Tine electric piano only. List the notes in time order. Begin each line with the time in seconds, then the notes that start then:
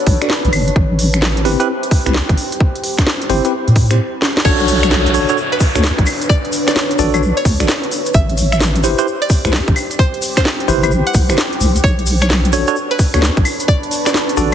0.21 D4 F#4 A4 D5
1.45 C4 E4 G4 B4
1.60 C4 E4 G4 B4
2.06 C4 E4 G4 B4
3.29 C4 E4 G4 C5
3.45 C4 E4 G4 B4
3.91 C4 E4 G4 C5
4.45 D4 F#4 A4 C#5
5.14 D4 F#4 A4 C#5
5.29 D4 F#4 A4 C#5
5.75 D4 F#4 A4 C#5
6.99 D4 F#4 A4 D5
7.14 D4 F#4 A4 C#5
7.60 D4 F#4 A4 D5
8.84 E4 G4 B4 C5
8.98 E4 G4 B4 C5
9.45 E4 G4 B4 C5
10.68 E4 G4 B4 C5
10.83 E4 G4 B4 C5
11.29 E4 G4 B4 C5
12.53 D4 F#4 A4 C#5
12.68 D4 F#4 A4 C#5
13.14 D4 F#4 A4 C#5
14.37 D4 F#4 A4 D5